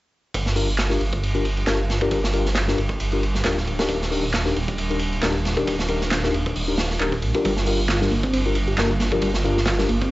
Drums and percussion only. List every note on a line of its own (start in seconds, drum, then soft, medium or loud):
0.34 kick loud
0.34 ride medium
0.46 snare soft
0.56 open hi-hat medium
0.78 snare loud
0.78 clap loud
0.78 ride medium
0.90 snare soft
1.01 ride medium
1.13 kick medium
1.23 ride medium
1.35 ride soft
1.45 ride medium
1.57 ride soft
1.67 snare loud
1.67 clap medium
1.67 ride medium
1.90 snare soft
1.90 ride medium
2.01 kick medium
2.11 kick medium
2.11 ride medium
2.24 snare soft
2.33 ride medium
2.45 snare soft
2.55 snare loud
2.55 clap loud
2.55 ride medium
2.68 snare medium
2.78 ride medium
2.89 kick medium
3.00 ride medium
3.12 ride soft
3.23 ride medium
3.35 snare soft
3.44 snare medium
3.44 clap loud
3.44 ride medium
3.58 snare soft
3.68 ride medium
3.79 snare medium
3.79 ride medium
3.89 kick medium
3.89 ride medium
4.02 snare soft
4.12 open hi-hat medium
4.34 snare loud
4.34 clap loud
4.34 ride medium
4.46 snare soft
4.56 ride medium
4.68 kick medium
4.78 ride medium
4.91 ride soft
4.99 ride medium
5.13 ride soft
5.23 snare loud
5.23 clap loud
5.23 ride medium
5.45 snare soft
5.45 ride medium
5.57 kick medium
5.67 kick loud
5.67 ride medium
5.79 snare soft
5.88 ride medium
6.01 snare soft
6.11 snare loud
6.11 clap loud
6.11 ride medium
6.23 snare medium
6.34 ride medium
6.46 kick medium
6.56 open hi-hat medium
6.78 snare medium
6.78 ride medium
6.90 snare soft
7.00 clap loud
7.00 ride medium
7.12 kick medium
7.22 ride medium
7.35 kick medium
7.45 kick loud
7.45 ride medium
7.56 snare soft
7.66 open hi-hat medium
7.88 snare loud
7.88 clap loud
7.88 ride medium
8.01 snare soft
8.11 ride medium
8.23 kick medium
8.33 ride medium
8.45 ride soft
8.55 ride medium
8.68 ride soft
8.77 snare loud
8.77 clap loud
8.77 ride medium
9.00 snare soft
9.00 ride medium
9.12 kick medium
9.22 kick loud
9.22 ride medium
9.34 snare soft
9.45 ride medium
9.57 snare soft
9.66 snare loud
9.66 clap loud
9.66 ride medium
9.78 snare medium
9.89 ride medium
10.02 kick medium